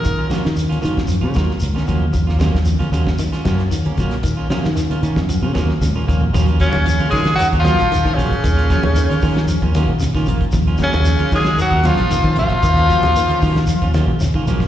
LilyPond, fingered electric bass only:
\new Staff \with { instrumentName = "Fingered electric bass" } { \clef bass \time 4/4 \key ees \minor \tempo 4 = 114 r8. ees8. ees16 ges,8 des16 ees,16 r16 des,16 r16 ees,8 | ees,16 ees,8 ees,8 r16 ees,8 r8 ges,8 r8 bes,,8 | r8. ees8. ees16 ges,8 des16 ees,16 r16 des,16 r16 ees,8 | ees,8. ees,8 r16 ees8. ees,8 bes,,16 r16 ees16 bes,,16 r16 |
ees,8. ees,8 r16 ees8. ees,8 bes,,16 r16 ees16 bes,,16 r16 | ees,8. ees,8 r16 ees8. ees,8 bes,,16 r16 ees16 bes,,16 r16 | ees,8. ees,8 r16 ees8. ees,8 bes,,16 r16 ees16 bes,,16 r16 | }